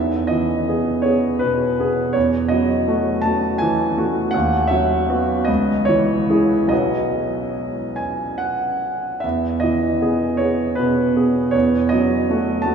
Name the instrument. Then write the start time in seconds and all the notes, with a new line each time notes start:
grand piano
Already playing: E2 E5
0.27 E3 D#5
0.68 B3 G#4
1.02 B3 G#4 C#5
1.39 B2 B4
1.79 B3 G#4
2.13 E2 C#5
2.48 F#3 D#5
2.88 A3 F#4
3.22 A3 A5
3.26 F#4
3.58 E3 G#5
3.98 A3 F#4
4.31 D#2 F#5
4.67 F#3 E5
5.09 B3 F#4
5.45 C#2 D#5
5.85 E3 C#5
6.30 E4 G#4
6.67 B1 F#3 B3 B4 D#5
7.96 G#5
8.38 F#5
9.20 E2 E5
9.60 E3 D#5
10.01 B3 G#4
10.37 B3 G#4 C#5
10.75 B2 B4
11.16 B3 G#4
11.51 E2 C#5
11.89 F#3 D#5
12.30 A3 F#4
12.62 A3 F#4 A5